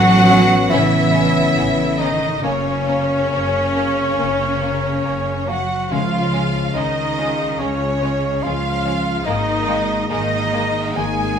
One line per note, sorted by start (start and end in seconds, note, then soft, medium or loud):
0.00 0.60 A1 loud
0.00 2.46 A2 loud
0.00 0.71 F#3 loud
0.00 1.12 B3 medium
0.00 2.27 B3 medium
0.00 2.27 C#4 medium
0.00 0.70 F#4 loud
0.00 0.71 F#4 loud
0.00 1.55 A4 medium
0.00 0.71 F#5 loud
0.00 0.72 F#5 loud
0.29 0.38 B3 medium
0.29 1.98 C#4 medium
0.29 0.38 C#4 medium
0.70 1.46 A1 loud
0.70 2.46 C#3 medium
0.70 1.99 E3 medium
0.70 0.80 B3 medium
0.70 0.81 C#4 medium
0.70 2.00 E4 medium
0.70 1.99 E4 medium
0.70 2.00 E5 medium
0.70 1.99 E5 loud
1.13 2.46 B3 medium
1.13 1.22 B3 medium
1.13 1.22 C#4 medium
1.56 2.32 A1 medium
1.56 1.66 B3 medium
1.56 1.65 C#4 medium
1.56 2.46 A4 medium
1.99 2.43 D#3 medium
1.99 2.08 B3 medium
1.99 3.74 C#4 medium
1.99 2.08 C#4 medium
1.99 2.42 D#4 medium
1.99 2.42 D#5 medium
1.99 2.43 D#5 medium
2.42 3.21 F#1 medium
2.42 5.95 F#2 medium
2.42 5.45 C#3 medium
2.42 2.51 A#3 medium
2.42 5.56 A#3 medium
2.42 5.48 C#4 medium
2.42 5.50 C#4 medium
2.42 2.51 C#4 medium
2.42 5.56 C#4 medium
2.42 5.45 C#5 medium
2.42 5.51 C#5 medium
2.87 4.60 A#3 soft
2.87 2.96 A#3 medium
2.87 2.96 C#4 medium
3.31 4.08 F#1 medium
3.31 3.40 A#3 medium
3.31 3.40 C#4 medium
3.75 3.83 A#3 medium
3.75 3.83 C#4 medium
3.75 5.48 C#4 medium
4.18 4.94 F#1 medium
4.18 5.91 C#3 soft
4.18 4.26 A#3 medium
4.18 4.26 C#4 medium
4.60 4.68 A#3 medium
4.60 5.95 A#3 soft
4.60 4.69 C#4 soft
5.04 5.82 F#1 medium
5.04 5.12 A#3 soft
5.04 5.12 C#4 medium
5.47 5.92 F#3 medium
5.47 5.55 A#3 soft
5.47 5.56 C#4 soft
5.47 6.33 C#4 soft
5.47 5.92 F#4 medium
5.47 5.91 F#4 medium
5.47 5.92 F#5 medium
5.47 5.93 F#5 medium
5.91 6.65 C#2 medium
5.91 7.13 C#3 medium
5.91 9.30 C#3 medium
5.91 6.75 F3 medium
5.91 5.99 G#3 medium
5.91 9.22 G#3 medium
5.91 5.99 C#4 medium
5.91 9.23 C#4 medium
5.91 6.47 F4 medium
5.91 6.75 F4 medium
5.91 6.74 F5 medium
5.91 6.47 F5 medium
6.34 6.42 G#3 medium
6.34 6.42 C#4 medium
6.34 8.01 C#4 soft
6.74 7.50 C#2 medium
6.74 7.58 D#3 medium
6.74 6.82 G#3 medium
6.74 6.82 C#4 medium
6.74 7.61 D#4 medium
6.74 7.60 D#4 medium
6.74 8.43 G#4 medium
6.74 7.55 D#5 medium
6.74 7.60 D#5 medium
7.18 7.26 G#3 medium
7.18 7.26 C#4 medium
7.18 8.84 F4 medium
7.59 8.33 C#2 medium
7.59 8.44 C#3 medium
7.59 7.68 G#3 medium
7.59 9.67 G#3 soft
7.59 8.44 C#4 medium
7.59 8.43 C#4 medium
7.59 7.68 C#4 medium
7.59 8.44 C#5 medium
7.59 8.43 C#5 medium
8.02 8.10 G#3 medium
8.02 8.10 C#4 medium
8.02 9.30 C#4 soft
8.43 9.17 C#2 medium
8.43 9.26 F3 medium
8.43 8.53 G#3 medium
8.43 8.52 C#4 medium
8.43 9.25 F4 medium
8.43 11.39 G#4 medium
8.43 9.27 F5 medium
8.43 9.26 F5 medium
8.85 8.93 G#3 medium
8.85 8.93 C#4 medium
8.85 9.30 F4 soft
9.26 10.00 G#1 medium
9.26 11.39 G#2 medium
9.26 10.08 D#3 medium
9.26 9.34 G#3 medium
9.26 11.39 G#3 medium
9.26 11.39 A#3 medium
9.26 9.35 A#3 medium
9.26 10.07 D#4 medium
9.26 10.08 D#4 medium
9.26 10.08 D#5 medium
9.67 9.75 G#3 medium
9.67 11.36 G#3 medium
9.67 9.76 A#3 medium
10.09 10.86 G#1 medium
10.09 10.94 D#3 medium
10.09 10.18 G#3 medium
10.09 10.18 A#3 medium
10.09 10.94 D#4 medium
10.09 11.39 A#4 medium
10.09 10.97 D#5 medium
10.09 10.94 D#5 loud
10.53 10.61 G#3 medium
10.53 11.39 A#3 medium
10.53 10.61 A#3 medium
10.95 11.39 G#1 medium
10.95 11.39 D#3 medium
10.95 11.03 G#3 medium
10.95 11.39 G#3 medium
10.95 11.04 A#3 medium
10.95 11.39 G#4 medium
10.95 11.39 G#5 medium